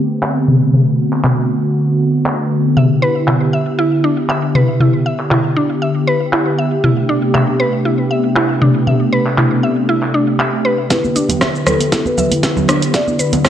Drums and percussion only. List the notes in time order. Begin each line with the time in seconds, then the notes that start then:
0.23 clap
0.48 mid tom
0.73 mid tom
1.13 clap
1.24 clap, mid tom
2.26 clap
2.77 mid tom
3.28 clap, mid tom
4.29 clap
4.55 mid tom
4.80 mid tom
5.19 clap
5.31 clap, mid tom
6.33 clap
6.84 mid tom
7.35 clap, mid tom
8.36 clap
8.62 mid tom
8.87 mid tom
9.26 clap
9.38 clap, mid tom
10.03 clap
10.40 clap
10.90 kick, snare, closed hi-hat, mid tom, muted conga, shaker
11.05 high conga, shaker
11.16 closed hi-hat, muted conga, shaker
11.29 closed hi-hat, high conga, low conga, shaker
11.41 kick, cross-stick, snare, mid tom, muted conga, shaker
11.56 shaker
11.67 cross-stick, closed hi-hat, high conga, low conga, shaker
11.80 closed hi-hat, muted conga, shaker
11.92 kick, snare, closed hi-hat, shaker
12.05 muted conga, high conga, shaker
12.18 low conga, shaker
12.31 closed hi-hat, muted conga, high conga, shaker
12.43 kick, snare, closed hi-hat, shaker
12.57 low conga, shaker
12.68 cross-stick, closed hi-hat, mid tom, muted conga, shaker
12.82 closed hi-hat, shaker
12.94 kick, snare, closed hi-hat, mid tom, muted conga, shaker
13.07 high conga, shaker
13.19 closed hi-hat, muted conga, shaker
13.33 closed hi-hat, high conga, low conga, shaker
13.45 kick, cross-stick, snare, muted conga, shaker